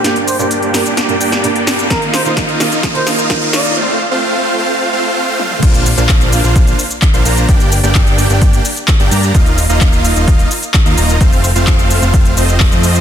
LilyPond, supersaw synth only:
\new Staff \with { instrumentName = "Supersaw synth" } { \time 4/4 \key bes \major \tempo 4 = 129 <bes d' g' d'' g''>8 r16 <bes d' g' d'' g''>4 <bes d' g' d'' g''>8. <bes d' g' d'' g''>8. <bes d' g' d'' g''>8. | <bes ees' f' ees'' f''>8 r16 <bes ees' f' ees'' f''>4 <bes ees' f' ees'' f''>8. <bes ees' f' ees'' f''>8. <bes ees' f' ees'' f''>8. | <a c' f' c'' f''>8 r16 <a c' f' c'' f''>4 <a c' f' c'' f''>8. <a c' f' c'' f''>8. <a c' f' c'' f''>8. | <bes d' f' c'' f''>8 r16 <bes d' f' c'' f''>4 <bes d' f' c'' f''>8. r8. <bes d' f' c'' f''>16 <bes d' f' c'' bes''>8 |
<bes d' g' d'' g''>8 r16 <bes d' g' d'' g''>4 <bes d' g' d'' g''>8. r8. <bes d' g' d'' g''>16 <bes d' g' d'' bes''>8 | <bes ees' f' ees'' f''>8 r16 <bes ees' f' ees'' f''>4 <bes ees' f' ees'' f''>8. r8. <bes ees' f' ees'' f''>16 <bes ees' f' ees'' bes''>8 | <a c' f' c'' f''>8 r16 <a c' f' c'' f''>4 <a c' f' c'' f''>8. <a c' f' c'' ees''>8. <a c' f' c'' ees''>8. | }